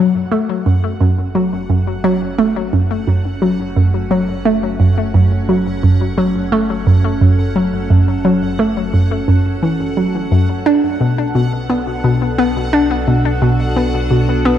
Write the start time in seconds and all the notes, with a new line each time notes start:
Already playing: F#1 F#3 A3 B3 F#4 A4 F#5
0.31 A3 C#4
0.66 F#2
1.01 F#2
1.35 F#3
1.70 F#2
2.04 F#3
2.38 A3
2.73 F#2
3.08 F#2
3.42 F#3
3.76 F#2
4.11 F#3
4.45 A3
4.80 F#2
5.14 F#2
5.49 F#3
5.83 F#2
6.18 F#3
6.52 A3
6.87 F#2
7.21 F#2
7.56 F#3
7.90 F#2
8.25 F#3
8.59 A3
8.94 F#2
9.28 F#2
9.63 E3
9.97 F#3
10.31 F#2
10.66 B1 B3 D4
10.78 D4
11.01 B2
11.34 B2 F#4
11.70 B3
11.78 F#5
12.04 B2
12.38 B3
12.73 D4
13.08 B2
13.42 B2
13.76 B3
14.11 B2
14.45 B3